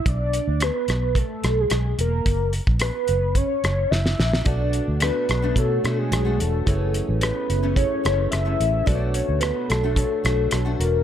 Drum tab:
HH |x-x-x-x-x-x-x-x-|x-x-x-x-x-x-----|x-x-x-x-x-x-x-x-|x-x-x-x-x-x-x-x-|
SD |----r-r---r-r---|----r-----r-oooo|----r-r---r-r---|----r-----r-r---|
BD |o-------o-------|o--o----o-------|o-------o-------|o-------o-------|

HH |x-x-x-x-x-x-x-x-|
SD |----r-r---r-r---|
BD |o-------o-------|